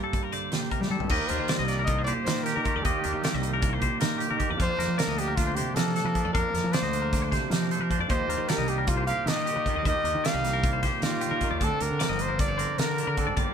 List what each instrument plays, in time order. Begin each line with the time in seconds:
Already playing: clean electric guitar G2 G3 A#3 F4
0.04 clean electric guitar A4
0.13 kick, closed hi-hat
0.23 clean electric guitar A#4
0.32 clean electric guitar D3 C5 D5, closed hi-hat
0.52 clean electric guitar A#2 C5, trumpet G4, snare, closed hi-hat
0.71 clean electric guitar C3 A#4, kick, closed hi-hat
0.81 fingered electric bass G3, clean electric guitar G4, snare
0.90 clean electric guitar D3 A4, fingered electric bass G3
1.00 fingered electric bass G2, floor tom
1.09 fingered electric bass D#2, clean electric guitar D#3 A#3 F4 G4 D#5, trumpet A#4, kick, crash
1.27 fingered electric bass D#2, clean electric guitar D4 A#4, trumpet C5, closed hi-hat
1.39 fingered electric bass D#3, clean electric guitar F4
1.48 clean electric guitar G3 D5, snare, closed hi-hat
1.59 fingered electric bass C2, clean electric guitar D#5
1.66 clean electric guitar A#3, trumpet D5, snare, closed hi-hat
1.79 clean electric guitar A#4
1.84 trumpet D#5, kick, closed hi-hat
1.89 clean electric guitar F4
1.98 clean electric guitar C5
2.04 clean electric guitar A#2 G4 C5, trumpet D5, closed hi-hat
2.24 fingered electric bass D#3, clean electric guitar F4 A#4, trumpet C5, snare, closed hi-hat
2.43 clean electric guitar G4, trumpet A#4, snare, closed hi-hat
2.56 fingered electric bass D#3, clean electric guitar A#4
2.63 clean electric guitar D#3 A#3 F4, trumpet A#4, kick, closed hi-hat
2.67 clean electric guitar G4
2.76 fingered electric bass D#2, clean electric guitar D5
2.84 fingered electric bass D#2, clean electric guitar D#3 A#3 F4 D#5, trumpet G4, kick, closed hi-hat
3.03 fingered electric bass D#2, clean electric guitar D4 A#4, closed hi-hat
3.13 fingered electric bass D#3, clean electric guitar F4
3.22 clean electric guitar G3 D5, snare, closed hi-hat
3.34 fingered electric bass C2, clean electric guitar D#5
3.42 clean electric guitar A#3, closed hi-hat
3.53 clean electric guitar A#4
3.61 clean electric guitar D4, kick, closed hi-hat
3.70 clean electric guitar F4 C5
3.79 clean electric guitar A#2 G4 C5, kick, closed hi-hat
4.00 fingered electric bass D#3, clean electric guitar F4 A#4, snare, closed hi-hat
4.18 clean electric guitar G4, closed hi-hat
4.31 fingered electric bass D#3, clean electric guitar A#4
4.37 clean electric guitar D#3 A#3 F4 G4, kick, closed hi-hat
4.49 fingered electric bass E2, clean electric guitar D5
4.57 fingered electric bass F2, clean electric guitar F3 D4 F5, kick, closed hi-hat
4.62 trumpet C5
4.77 fingered electric bass F2, clean electric guitar D4 A#4, closed hi-hat
4.81 snare
4.88 fingered electric bass F3
4.97 clean electric guitar A#3 D5, trumpet A#4, snare, closed hi-hat
5.08 fingered electric bass D2, clean electric guitar D#5
5.17 clean electric guitar D4, trumpet G4, closed hi-hat
5.28 clean electric guitar A#4
5.36 clean electric guitar D4, trumpet F4, kick, snare, closed hi-hat
5.47 clean electric guitar C5
5.55 clean electric guitar C3 D4 C5, trumpet G4, closed hi-hat
5.75 fingered electric bass F3, clean electric guitar D4 A#4, trumpet A4, snare, closed hi-hat
5.96 clean electric guitar D4 A4, snare, closed hi-hat
6.05 fingered electric bass F3, clean electric guitar A#4
6.15 clean electric guitar F3 D4, kick, closed hi-hat
6.25 fingered electric bass F2, clean electric guitar D5
6.33 fingered electric bass F2, clean electric guitar F3 D4 F5, trumpet A#4, kick, closed hi-hat
6.54 fingered electric bass F2, clean electric guitar D4 A#4, snare, closed hi-hat
6.64 fingered electric bass F3
6.73 clean electric guitar A#3 D5, trumpet C5, snare, closed hi-hat
6.82 fingered electric bass D2, clean electric guitar D#5
6.93 clean electric guitar D4, closed hi-hat
7.02 clean electric guitar A#4
7.13 clean electric guitar D4, kick, snare, closed hi-hat
7.22 clean electric guitar C5
7.31 clean electric guitar C3 C5, kick, snare, closed hi-hat
7.50 fingered electric bass F3, clean electric guitar A#4 C5, snare, closed hi-hat
7.71 clean electric guitar A4 C5, closed hi-hat
7.79 fingered electric bass F3, clean electric guitar A#4
7.90 clean electric guitar F3 D4 C5, kick, closed hi-hat
7.99 fingered electric bass F2, clean electric guitar D5
8.09 fingered electric bass D#2, clean electric guitar D#3 A#3 F4 G4 D#5, trumpet C5, kick, closed hi-hat
8.27 fingered electric bass D#2, clean electric guitar D4 A#4, closed hi-hat
8.38 fingered electric bass D#3, clean electric guitar F4
8.48 clean electric guitar G3 D5, trumpet A#4, snare, closed hi-hat
8.58 fingered electric bass C2, clean electric guitar D#5
8.68 clean electric guitar A#3, trumpet G4, closed hi-hat
8.78 clean electric guitar A#4
8.87 clean electric guitar A#3, trumpet F4, kick, closed hi-hat
8.97 clean electric guitar C5
9.07 clean electric guitar A#2 G4 C5, trumpet F5, closed hi-hat
9.26 fingered electric bass D#3, clean electric guitar D4 A#4, trumpet D#5, snare, closed hi-hat
9.37 clean electric guitar F4
9.46 clean electric guitar G4, closed hi-hat
9.56 fingered electric bass D#3, clean electric guitar A#4
9.66 clean electric guitar D#3 A#3 F4, kick, closed hi-hat
9.70 clean electric guitar G4
9.75 fingered electric bass D#2, clean electric guitar D5
9.85 fingered electric bass D#2, clean electric guitar D#3 A#3 F4 D#5, trumpet D#5, kick, closed hi-hat
9.90 clean electric guitar G4
10.04 fingered electric bass D#2, clean electric guitar F4 A#4, closed hi-hat
10.15 fingered electric bass D#3
10.24 clean electric guitar G3 D5, trumpet F5, snare, closed hi-hat
10.33 fingered electric bass C2, clean electric guitar D#5
10.44 clean electric guitar A#3, snare, closed hi-hat
10.53 clean electric guitar A#4
10.63 clean electric guitar F4, kick, closed hi-hat
10.73 clean electric guitar C5
10.83 clean electric guitar A#2 G4 C5, kick, snare, closed hi-hat
11.02 fingered electric bass D#3, clean electric guitar A#3 A#4, trumpet F4, snare, closed hi-hat
11.21 clean electric guitar A#3 G4, closed hi-hat
11.31 fingered electric bass D#3, clean electric guitar A#4
11.41 clean electric guitar D#3 A#3, kick, closed hi-hat
11.51 fingered electric bass D#2, clean electric guitar D5
11.60 fingered electric bass D2, clean electric guitar D3 C4 D4 D5, trumpet A4, kick, closed hi-hat
11.80 fingered electric bass D2, clean electric guitar D4 A#4, trumpet A#4, closed hi-hat
11.91 fingered electric bass D3
11.99 clean electric guitar F3 D5, snare, closed hi-hat
12.09 fingered electric bass G1, clean electric guitar D#5
12.19 clean electric guitar A#3, trumpet C5, closed hi-hat
12.28 clean electric guitar C4 A#4
12.39 clean electric guitar D4, trumpet D5, kick, closed hi-hat
12.48 clean electric guitar C5
12.58 clean electric guitar D3 A#4 C5, closed hi-hat
12.78 fingered electric bass D3, clean electric guitar D4 A#4, trumpet A#4, snare, closed hi-hat
12.97 clean electric guitar D4 G4, closed hi-hat
13.07 fingered electric bass D3, clean electric guitar A#4
13.17 clean electric guitar D3 C4 D4, trumpet A4, kick, closed hi-hat
13.27 fingered electric bass G#1, clean electric guitar D5
13.36 fingered electric bass G1, clean electric guitar G2 A#3 F4 D5, trumpet G4, kick, closed hi-hat